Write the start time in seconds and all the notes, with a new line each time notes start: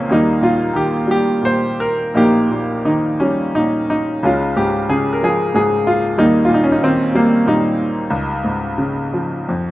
Already playing: C#2 A#2 C#3 F3 A#3 C4 C#4 F4
0.09 D#2 G3 A#3 D#4
0.41 A#2 F4
0.73 D#3 G4
1.07 G3
1.11 G4
1.42 A#2 C5
1.80 A#4
2.14 A#1 A#3 D#4 G4
2.50 A#2
2.85 D#3 D#4
3.20 G3 C#4
3.55 A#2 D#4
3.90 D#4
4.23 C#2 G#3 C#4 F4
4.56 G#2 G4
4.89 C#3 G#4
5.13 A#4
5.23 F3 G#4
5.54 G#2 G#4
5.87 F4
6.18 D#2 G3 A#3 D#4
6.45 A#2 F4
6.54 D#4
6.64 C#4
6.72 D#4
6.83 D#3 C4
7.14 G3 A#3
7.46 A#2 G3 A#3 D#4
8.10 C#2
8.44 G#2
8.78 C#3
9.14 F3
9.49 F2